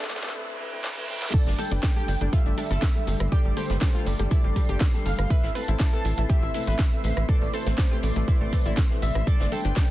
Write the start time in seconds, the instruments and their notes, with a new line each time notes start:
Already playing: ambient pad B2 C3 A3 A4, grand piano A3 C4 E4 B4, riser
0.04 snare
0.10 synth pluck A3, snare, open hi-hat
0.16 snare
0.23 synth pluck A3, grand piano A3 C4 E4 B4, snare, closed hi-hat, tambourine
0.29 snare
0.34 grand piano A3 C4 E4 B4, reverse cymbal
0.59 grand piano A3 C4 E4 B4
0.72 grand piano A3 C4 E4 B4
0.84 snare
0.97 grand piano A3 C4 E4 B4
1.09 grand piano A3 C4 E4 B4
1.22 snare
1.33 ambient pad D3 G3 A3 G4 A4, grand piano G3 A3 D4 A4, synth pluck A4, synth texture C5 C7, analog synth lead D5, kick, closed hi-hat, tambourine, crash
1.46 analog synth bass G1, synth pluck D4, snare, tambourine
1.58 grand piano G3 A3 D4 A4, synth pluck A4, analog synth lead G5, closed hi-hat, open hi-hat
1.72 analog synth bass G1, grand piano G3 A3 D4 B4, synth pluck D4, closed hi-hat, tambourine
1.83 synth pluck D4, kick, snare, closed hi-hat, tambourine
1.96 grand piano G3 A3 D4 A4, synth pluck G4, tambourine
2.08 analog synth bass G1, synth pluck D4, closed hi-hat, open hi-hat
2.21 analog synth bass G1, grand piano G3 A3 D4 A4, synth pluck D4, closed hi-hat, tambourine
2.33 grand piano G3 A3 D4 A4, synth pluck F4, analog synth lead E5, kick, closed hi-hat, tambourine
2.45 analog synth bass G1, synth pluck D4, closed hi-hat, tambourine
2.57 grand piano G3 A3 D4 A4, synth pluck D4, closed hi-hat, open hi-hat
2.71 analog synth bass G1, grand piano G3 A3 D4 A4, synth pluck A4, snare, closed hi-hat, tambourine
2.82 kick, snare, closed hi-hat, tambourine
2.94 grand piano G3 A3 D4 A4, tambourine
3.07 analog synth bass G1, grand piano G3 A3 D4 A4, closed hi-hat, open hi-hat
3.20 analog synth bass G1, cross-stick, closed hi-hat, tambourine
3.32 grand piano G3 A3 D4 A4, synth pluck G4, analog synth lead D5, kick, closed hi-hat, tambourine
3.44 analog synth bass G1, synth pluck G3, tambourine
3.57 grand piano G3 A3 D4 A4, synth pluck G4, analog synth lead C5, closed hi-hat, open hi-hat
3.70 analog synth bass G1, synth pluck G3, grand piano G3 A3 D4 B4, snare, closed hi-hat, tambourine
3.81 synth pluck G3, kick, snare, closed hi-hat
3.94 grand piano G3 A3 D4 A4, synth pluck F4, tambourine
4.06 analog synth bass G1, synth pluck G3, analog synth lead D5, closed hi-hat, open hi-hat
4.19 analog synth bass G1, synth pluck G3, grand piano G3 A3 D4 A4, closed hi-hat, tambourine
4.31 grand piano G3 A3 D4 A4, synth pluck E4, analog synth lead D5, kick, closed hi-hat, tambourine
4.44 analog synth bass G1, synth pluck G3, tambourine
4.56 synth pluck G3, grand piano G3 A3 D4 A4, kick, closed hi-hat, open hi-hat
4.69 analog synth bass G1, grand piano G3 A3 D4 A4, synth pluck G4, closed hi-hat, tambourine
4.80 kick, snare, closed hi-hat, tambourine
4.94 grand piano G3 A3 D4 A4, snare, tambourine
5.06 analog synth bass G1, grand piano G3 A3 D4 A4, analog synth lead F5, closed hi-hat, open hi-hat
5.19 analog synth bass G1, cross-stick, closed hi-hat, tambourine
5.30 ambient pad B2 C3 E3 A3 E4, grand piano A3 C4 E4 B4, synth pluck B4, analog synth lead E5, kick, closed hi-hat, tambourine
5.43 analog synth bass A1, synth pluck E4, snare, tambourine
5.55 grand piano A3 C4 E4 B4, synth pluck B4, analog synth lead A5, closed hi-hat, open hi-hat
5.68 analog synth bass A1, grand piano A3 C4 E4 C5, synth pluck E4, closed hi-hat, tambourine
5.80 synth pluck E4, kick, snare, closed hi-hat, tambourine
5.93 grand piano A3 C4 E4 B4, synth pluck A4, tambourine
6.05 analog synth bass A1, synth pluck E4, closed hi-hat, open hi-hat
6.17 analog synth bass A1, grand piano A3 C4 E4 B4, synth pluck E4, closed hi-hat, tambourine
6.29 grand piano A3 C4 E4 B4, synth pluck G4, analog synth lead E5, kick, closed hi-hat, tambourine
6.42 analog synth bass A1, synth pluck E4, closed hi-hat, tambourine
6.54 grand piano A3 C4 E4 B4, synth pluck E4, closed hi-hat, open hi-hat
6.67 analog synth bass A1, grand piano A3 C4 E4, synth pluck B4, snare, closed hi-hat, tambourine
6.79 kick, snare, closed hi-hat, tambourine
6.92 grand piano A3 C4 E4 B4, tambourine
7.04 analog synth bass A1, grand piano A3 C4 E4 B4, closed hi-hat, open hi-hat
7.17 analog synth bass A1, cross-stick, closed hi-hat, tambourine
7.28 grand piano A3 C4 E4 B4, synth pluck A4, analog synth lead D5, kick, closed hi-hat, tambourine
7.41 analog synth bass A1, synth pluck A3, tambourine
7.53 grand piano A3 C4 E4 B4, synth pluck A4, analog synth lead C5, closed hi-hat, open hi-hat
7.66 analog synth bass A1, synth pluck A3, grand piano A3 C4 E4 C5, snare, closed hi-hat, tambourine
7.78 synth pluck A3, kick, snare, closed hi-hat, tambourine
7.91 grand piano A3 C4 E4 B4, synth pluck G4, tambourine
8.02 analog synth bass A1, synth pluck A3, analog synth lead D5, closed hi-hat, open hi-hat
8.16 analog synth bass A1, synth pluck A3, grand piano A3 C4 E4 B4, closed hi-hat, tambourine
8.28 synth pluck E4, analog synth lead D5, kick, closed hi-hat, tambourine
8.41 analog synth bass A1, synth pluck A3, tambourine
8.53 grand piano A3 C4 E4 B4, synth pluck A3, kick, closed hi-hat, open hi-hat
8.66 analog synth bass A1, grand piano A3 C4 E4 D5, synth pluck E4, closed hi-hat, tambourine
8.77 kick, snare, closed hi-hat, tambourine
8.90 grand piano A3 C4 E4 B4, snare, tambourine
9.02 analog synth bass A1, grand piano A3 C4 E4 D5, analog synth lead E5, closed hi-hat, open hi-hat
9.15 analog synth bass A1, cross-stick, closed hi-hat, tambourine
9.27 ambient pad A2 D3 G3 D4 G4, grand piano G3 A3 D4 A4, synth pluck A4, analog synth lead D5, kick, closed hi-hat, tambourine
9.39 analog synth bass G1, synth pluck D4, snare, tambourine
9.52 grand piano G3 A3 D4 A4, synth pluck A4, analog synth lead G5, closed hi-hat, open hi-hat
9.65 analog synth bass G1, grand piano G3 A3 D4 B4, synth pluck D4, closed hi-hat, tambourine
9.76 synth pluck D4, kick, snare, closed hi-hat, tambourine